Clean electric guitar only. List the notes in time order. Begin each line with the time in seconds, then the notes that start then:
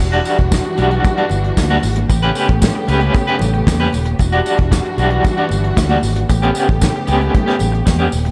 0.01 muted clean electric guitar stroke
0.12 G3 D4 F#4
0.25 G3 D4 F#4
0.39 muted clean electric guitar stroke
0.52 muted clean electric guitar stroke
0.65 muted clean electric guitar stroke
0.78 G3 D4 F#4
0.91 D4 F#4
1.04 muted clean electric guitar stroke
1.17 G3 D4 F#4
1.31 muted clean electric guitar stroke
1.44 muted clean electric guitar stroke
1.58 muted clean electric guitar stroke
1.70 G3 D4 F#4
1.83 muted clean electric guitar stroke
1.97 muted clean electric guitar stroke
2.10 muted clean electric guitar stroke
2.23 C#4 G4 B4
2.35 C#4 G4 B4
2.49 muted clean electric guitar stroke
2.62 muted clean electric guitar stroke
2.75 muted clean electric guitar stroke
2.88 C#4 G4 B4
3.01 C#4 G4 B4
3.14 muted clean electric guitar stroke
3.27 C#4 G4 B4
3.41 muted clean electric guitar stroke
3.54 muted clean electric guitar stroke
3.67 muted clean electric guitar stroke
3.80 C#4 G4 B4
3.93 muted clean electric guitar stroke
4.06 muted clean electric guitar stroke
4.19 muted clean electric guitar stroke
4.32 G3 D4 F#4
4.45 G3 D4 F#4
4.59 muted clean electric guitar stroke
4.71 muted clean electric guitar stroke
4.85 muted clean electric guitar stroke
4.98 G3 D4 F#4
5.11 G3 D4 F#4
5.24 muted clean electric guitar stroke
5.37 G3 D4 F#4
5.51 muted clean electric guitar stroke
5.64 muted clean electric guitar stroke
5.77 muted clean electric guitar stroke
5.90 G3 D4 F#4
6.03 muted clean electric guitar stroke
6.16 muted clean electric guitar stroke
6.29 muted clean electric guitar stroke
6.42 B3 C#4 G4
6.55 B3 C#4 G4
6.81 muted clean electric guitar stroke
6.95 muted clean electric guitar stroke
7.07 B3 C#4 G4
7.20 B3 C#4 G4
7.33 muted clean electric guitar stroke
7.46 B3 C#4 G4
7.60 muted clean electric guitar stroke
7.72 muted clean electric guitar stroke
7.86 muted clean electric guitar stroke
7.99 B3 C#4 G4
8.12 muted clean electric guitar stroke
8.25 muted clean electric guitar stroke